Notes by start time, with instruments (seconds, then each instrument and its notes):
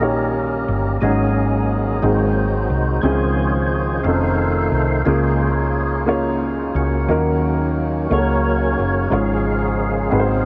Already playing: fingered electric bass A#1, upright piano A#2 A#4, harmonium D#3 G3 A#3 C#4
0.00 upright piano A#3 C#4 D#4 G4 C#5, tonewheel organ C#4 G4 A#4
0.68 fingered electric bass G1
1.01 fingered electric bass G#1, upright piano G#2 G#3 C#4 D#4 F#4 G#4, tonewheel organ F#3 A#3 C#4 D#4 G#4, harmonium F#3 G#3
2.02 fingered electric bass G#1, upright piano G#2 G#3 C4 D#4 F#4 G#4, tonewheel organ F#3 A#3 C4 D#4 F#4 C5, harmonium G#3 C4
2.70 fingered electric bass C2
3.02 fingered electric bass C#2, harmonium C#3 F3, upright piano C#3 G#3 C4 C#4 E4 G#4, tonewheel organ D#3 F3 F4 G#4 C5 C#5
3.11 upright piano F4
4.03 fingered electric bass F1, tonewheel organ D#3 A3 D#4 A4 C5 F5, harmonium D#3 A3 D#4, upright piano C4 C#4 D#4 F4 A4
4.72 fingered electric bass C2
5.05 fingered electric bass C#2, tonewheel organ C#3 G#3 F4 G#4 C5 C#5, upright piano C#3 A#3 C#4 F4 G#4 A#4, harmonium C#3 G#3 A#3
6.06 upright piano A#3 C#4 F4 G#4 C#5
6.75 fingered electric bass C#2, tonewheel organ A#3 C#4 F#4
7.08 fingered electric bass D#2, harmonium D#3 F#3, upright piano D#3 A#3 C#4 D#4 F4 A#4, tonewheel organ D#3 F#3 C#4
7.17 upright piano F#4
8.09 fingered electric bass C#2, harmonium C#3, upright piano C#3 A#3 C#4 F#4 A4 C#5, tonewheel organ F#3 A#3 C#4 F#4 A#4 C#5
8.18 upright piano A#4
8.79 fingered electric bass F#1
9.10 fingered electric bass G#1, upright piano G#2 G#3 C#4 F4 G#4 C#5, tonewheel organ C#3 F3 G#3 C#4 F5, harmonium F3 G#3
9.14 tonewheel organ G#4
10.10 fingered electric bass G#1, upright piano G#2 C4 D#4 F#4 G#4 B4, harmonium D#3 F#3 G#3 C4, tonewheel organ F#3 A#3 C4
10.19 upright piano C5